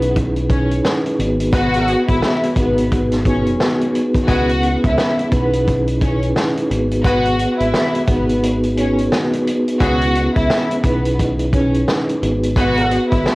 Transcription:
Already playing: B1 B3 C#4 D#4 E4 G#4 B4
0.02 closed hi-hat
0.16 kick, closed hi-hat
0.36 closed hi-hat
0.50 C#4 D#4 E4 G#4 C#5, kick, closed hi-hat
0.71 closed hi-hat
0.82 C#4 D#4 E4 G#4 B4, snare
1.06 closed hi-hat
1.17 G#1 B3 D#4 F#4 G#4 B4, closed hi-hat
1.40 closed hi-hat
1.53 G#3 F#4 G#4 B4 F#5, kick, closed hi-hat
1.74 closed hi-hat
1.88 closed hi-hat
2.07 G#1 E4 E5, kick, closed hi-hat
2.22 snare
2.43 closed hi-hat
2.56 G#1 B3 D#4 F#4 G#4 B4, kick, closed hi-hat
2.78 closed hi-hat
2.92 kick, closed hi-hat
3.12 snare, closed hi-hat
3.25 B3 C#4 D#4 F#4 G#4 B4 C#5, kick, closed hi-hat
3.47 closed hi-hat
3.59 B3 D#4 F#4 G#4 B4, snare
3.81 closed hi-hat
3.92 B3 D#4 F#4 G#4 B4, closed hi-hat
4.15 kick, closed hi-hat
4.27 C#2 G#3 B3 C#4 E4 F#4 B4 F#5, kick, closed hi-hat
4.32 B4
4.49 closed hi-hat
4.63 closed hi-hat
4.84 C#2 E4 E5, kick, closed hi-hat
4.98 snare
5.19 closed hi-hat
5.31 B1 B3 C#4 D#4 E4 G#4 B4, kick, closed hi-hat
5.53 closed hi-hat
5.67 kick, closed hi-hat
5.87 closed hi-hat
6.01 C#4 D#4 E4 G#4 B4 C#5, kick, closed hi-hat
6.22 closed hi-hat
6.34 C#4 E4, snare
6.57 closed hi-hat
6.68 G#1 B3 D#4 F#4 G#4 B4, closed hi-hat
6.91 closed hi-hat
7.03 G#3 B3 F#4 G#4 B4 F#5, kick, closed hi-hat
7.25 closed hi-hat
7.39 closed hi-hat
7.58 G#1 E4 E5, closed hi-hat
7.74 snare
7.95 closed hi-hat
8.08 G#1 B3 D#4 F#4 G#4 B4, kick, closed hi-hat
8.29 closed hi-hat
8.43 closed hi-hat
8.63 closed hi-hat
8.77 B3 C#4 D#4 F#4 G#4 B4 C#5, closed hi-hat
8.98 closed hi-hat
9.11 B3 D#4 F#4, snare
9.33 closed hi-hat
9.44 B3 D#4 F#4 G#4 B4, closed hi-hat
9.67 closed hi-hat
9.79 C#2 E3 C#4 E4 F#4 G#4 F#5, kick, closed hi-hat
9.84 B4
10.01 closed hi-hat
10.15 closed hi-hat
10.35 C#2 E4 E5, kick, closed hi-hat
10.50 snare
10.71 closed hi-hat
10.82 B1 B3 C#4 D#4 E4 G#4 B4, kick, closed hi-hat
11.05 closed hi-hat
11.19 kick, closed hi-hat
11.39 closed hi-hat
11.53 C#4 D#4 E4 G#4 B4 C#5, kick, closed hi-hat
11.74 closed hi-hat
11.85 C#4 D#4 E4 G#4 B4, snare
12.09 closed hi-hat
12.20 G#1 B3 D#4 F#4 G#4 B4, closed hi-hat
12.43 closed hi-hat
12.56 G#3 B3 F#4 G#4 B4 F#5, kick, closed hi-hat
12.77 closed hi-hat
12.91 closed hi-hat
13.11 G#1 E4 E5, kick, closed hi-hat
13.26 snare

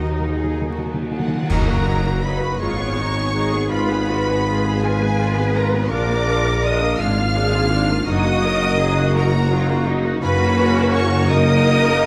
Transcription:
Already playing: D#2 D#3 A#3 D#4 F#4 A#4 D#5
0.03 D#3
0.11 D#3 A#4
0.19 D#3
0.28 D#3
0.32 D#3 D#4 G#4
0.44 D#3
0.52 D#3
0.61 D#3
0.69 D#3 F#4
0.78 D#3
0.86 D#3
0.94 D#3
1.03 D#3
1.11 D#3 D#4 F4 F#4 F#5
1.19 D#3
1.28 D#3
1.35 D#3
1.42 D#3
1.49 F#1 F#2 F#3 D#4 A#4 A#5, concert bass drum, crash
1.68 A#3 F#4
1.87 F#3 D#4
2.06 A#3 F#4 A#4
2.24 F#3 D#4 B4 B5
2.43 A#3 F#4 D#5
2.60 G#1 G#2 G#3 D#4 F4 C#5 C#6
2.78 B3 G#4
2.98 G#3 D#4
3.15 B3 G#4
3.34 G#3 D#4 G#4 B4
3.53 B3 G#4 D#5
3.70 G#2 G#3 F4 B4 B5
3.90 B3 G#4
4.10 G#3 F4 F#4
4.29 B3 G#4
4.47 G#3 F4 G#4 B4
4.65 B3 G#4 F5
4.83 G#3 F4 G#4 B4 G#5
5.02 B3 G#4 F5
5.20 G#3 F4 G#4
5.37 B3 F4 G#4
5.55 G#3 B3 F4 A#4 A#5
5.73 G#3 B3 G#4
5.91 A#1 A#2 D4 F4 A#4 D5 D6
6.09 A#3 D4
6.28 D4 F4
6.45 A#3 D4
6.63 D4 F4 A#4 D#5 D#6
6.82 A#3 D4 F5
6.99 G#1 G#2 G#3 D4 F4 F5 F6
7.18 A#3 F4
7.36 G#3 D4 G#4
7.54 A#3 F4
7.72 G#3 D4 F4 A#4
7.89 A#3 F4 D5
8.07 F#1 F#2 F#3 D#4 F#4 D#5 D#6
8.26 A#3 F#4
8.44 F#3 D#4 A#4
8.63 A#3 F#4
8.79 F#3 D#4 G#4 A#4
8.98 A#3 F#4 D#5
9.15 F#3 D#4 F#4 A#4 F#5 A#5
9.34 A#3 F#4 D#5
9.51 F#3 D#4 F4 F#4
9.68 A#3 D#4 F#4
9.86 F#3 A#3 D#4
10.04 F#3 A#3 F#4
10.22 F#1 F#2 A#3 C#4 F#4 B4 B5
10.41 A#3
10.59 C#4
10.78 F#4
10.94 A#4 C#5 C#6
11.13 C#5
11.29 F#2 A#3 D#4 A#4 D#5 D#6
11.48 A#3
11.65 D#4
11.82 F#4
12.00 A#4

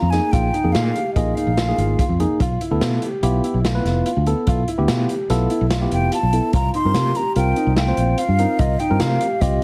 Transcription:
Already playing: A#5
0.02 F2
0.10 A#3 D#4 G#4 G#5, snare, closed hi-hat
0.32 A#1 F4 G5, kick, closed hi-hat
0.54 D#4, closed hi-hat
0.64 F2 A#3 D#4 G#4
0.72 A#2 F4 F5, snare, closed hi-hat
0.95 G4, closed hi-hat
1.15 A#1 A#3 D#4 F4 G#4 D#5, kick, closed hi-hat
1.35 D#4 F5, closed hi-hat
1.47 A#1
1.57 F4, snare, closed hi-hat
1.68 A#3 D#4 G#4
1.78 G#1 F4, closed hi-hat
1.99 F4, kick, closed hi-hat
2.09 F2
2.20 A#3 D#4 G#4, closed hi-hat
2.40 B1 F4, kick, closed hi-hat
2.61 E4, closed hi-hat
2.71 D2 B3 E4 A4
2.81 B2 F4, snare, closed hi-hat
3.02 G4, closed hi-hat
3.23 B1 B3 E4 F4 G4, closed hi-hat
3.44 E4, closed hi-hat
3.54 B1
3.65 F4, snare, closed hi-hat
3.75 B3 E4 B4
3.85 F1 F4, snare, closed hi-hat
4.06 F4, closed hi-hat
4.17 D2
4.26 B3 E4 A4, closed hi-hat
4.47 B1 F4, kick, closed hi-hat
4.68 E4, closed hi-hat
4.78 D2 B3 E4 G4
4.88 B2 F4, snare, closed hi-hat
5.09 G4, closed hi-hat
5.30 B1 B3 E4 F4 A4, snare, closed hi-hat
5.50 E4, closed hi-hat
5.61 B1
5.71 F4, snare, closed hi-hat
5.81 B3 E4 G4
5.91 F1 F4 G5, closed hi-hat
6.12 F4 A5, closed hi-hat
6.23 B1
6.33 B3 E4 A4, closed hi-hat
6.53 C2 F4 A#5, kick, closed hi-hat
6.74 D#4 C6, closed hi-hat
6.85 G2 C4 F4 A#4
6.94 C3 F4, snare, closed hi-hat
7.15 G4 A#5, closed hi-hat
7.36 C2 C4 F4 A#4 G5, closed hi-hat
7.56 D#4, closed hi-hat
7.67 C2
7.76 F4 G5, snare, closed hi-hat
7.88 C4 F4 C5
7.97 A#1 F4, closed hi-hat
8.18 F4 F5, closed hi-hat
8.28 G2
8.39 C4 D#4 F4 A#4, closed hi-hat
8.59 C2 F4 D#5, kick, closed hi-hat
8.79 D#4 G5, closed hi-hat
8.90 G2 C4 F4 A#4
9.00 C3 F4 F5, snare, closed hi-hat
9.21 G4, closed hi-hat
9.41 C2 C4 F4 G4 D#5, kick, closed hi-hat

